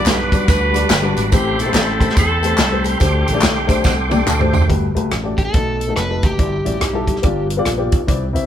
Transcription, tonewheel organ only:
0, 0, Header, 1, 2, 480
1, 0, Start_track
1, 0, Key_signature, 1, "major"
1, 0, Tempo, 422535
1, 1502, Time_signature, 4, 2, 24, 8
1, 9612, End_track
2, 0, Start_track
2, 0, Title_t, "Tonewheel organ"
2, 0, Program_c, 0, 16
2, 0, Note_on_c, 0, 55, 66
2, 0, Note_on_c, 0, 78, 67
2, 0, Note_on_c, 0, 83, 63
2, 0, Note_on_c, 0, 86, 70
2, 1480, Note_off_c, 0, 83, 0
2, 1482, Note_off_c, 0, 78, 0
2, 1482, Note_off_c, 0, 86, 0
2, 1484, Note_off_c, 0, 55, 0
2, 1494, Note_on_c, 0, 83, 58
2, 1498, Note_on_c, 0, 69, 70
2, 1500, Note_on_c, 0, 79, 66
2, 1500, Note_on_c, 0, 84, 80
2, 3395, Note_off_c, 0, 83, 0
2, 3398, Note_off_c, 0, 79, 0
2, 3402, Note_on_c, 0, 86, 77
2, 3411, Note_on_c, 0, 79, 62
2, 5297, Note_off_c, 0, 69, 0
2, 5298, Note_off_c, 0, 84, 0
2, 5310, Note_off_c, 0, 86, 0
2, 5314, Note_off_c, 0, 79, 0
2, 9612, End_track
0, 0, End_of_file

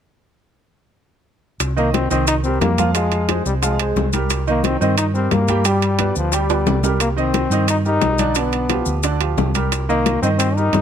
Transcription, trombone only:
0, 0, Header, 1, 2, 480
1, 0, Start_track
1, 0, Key_signature, -3, "minor"
1, 0, Tempo, 338219
1, 2268, Time_signature, 4, 2, 24, 8
1, 15349, End_track
2, 0, Start_track
2, 0, Title_t, "Trombone"
2, 0, Program_c, 0, 57
2, 2519, Note_on_c, 0, 58, 87
2, 2737, Note_off_c, 0, 58, 0
2, 2744, Note_on_c, 0, 60, 94
2, 2968, Note_off_c, 0, 60, 0
2, 2998, Note_on_c, 0, 60, 91
2, 3216, Note_off_c, 0, 60, 0
2, 3232, Note_on_c, 0, 63, 99
2, 3339, Note_off_c, 0, 63, 0
2, 3464, Note_on_c, 0, 60, 90
2, 3688, Note_off_c, 0, 60, 0
2, 3703, Note_on_c, 0, 58, 83
2, 4150, Note_off_c, 0, 58, 0
2, 4177, Note_on_c, 0, 56, 83
2, 4850, Note_off_c, 0, 56, 0
2, 4913, Note_on_c, 0, 55, 75
2, 5019, Note_off_c, 0, 55, 0
2, 5159, Note_on_c, 0, 56, 77
2, 5821, Note_off_c, 0, 56, 0
2, 6374, Note_on_c, 0, 58, 91
2, 6582, Note_on_c, 0, 60, 98
2, 6604, Note_off_c, 0, 58, 0
2, 6813, Note_off_c, 0, 60, 0
2, 6821, Note_on_c, 0, 60, 92
2, 7045, Note_off_c, 0, 60, 0
2, 7065, Note_on_c, 0, 63, 94
2, 7173, Note_off_c, 0, 63, 0
2, 7301, Note_on_c, 0, 60, 93
2, 7544, Note_on_c, 0, 58, 85
2, 7566, Note_off_c, 0, 60, 0
2, 8030, Note_on_c, 0, 55, 94
2, 8051, Note_off_c, 0, 58, 0
2, 8746, Note_off_c, 0, 55, 0
2, 8761, Note_on_c, 0, 53, 82
2, 9001, Note_on_c, 0, 55, 91
2, 9022, Note_off_c, 0, 53, 0
2, 9711, Note_off_c, 0, 55, 0
2, 9950, Note_on_c, 0, 58, 88
2, 10056, Note_off_c, 0, 58, 0
2, 10208, Note_on_c, 0, 60, 92
2, 10866, Note_off_c, 0, 60, 0
2, 10923, Note_on_c, 0, 63, 86
2, 11027, Note_off_c, 0, 63, 0
2, 11167, Note_on_c, 0, 63, 98
2, 11826, Note_off_c, 0, 63, 0
2, 11896, Note_on_c, 0, 59, 83
2, 12785, Note_off_c, 0, 59, 0
2, 14032, Note_on_c, 0, 58, 89
2, 14478, Note_off_c, 0, 58, 0
2, 14502, Note_on_c, 0, 60, 81
2, 14612, Note_off_c, 0, 60, 0
2, 14730, Note_on_c, 0, 60, 93
2, 14986, Note_on_c, 0, 63, 101
2, 15008, Note_off_c, 0, 60, 0
2, 15349, Note_off_c, 0, 63, 0
2, 15349, End_track
0, 0, End_of_file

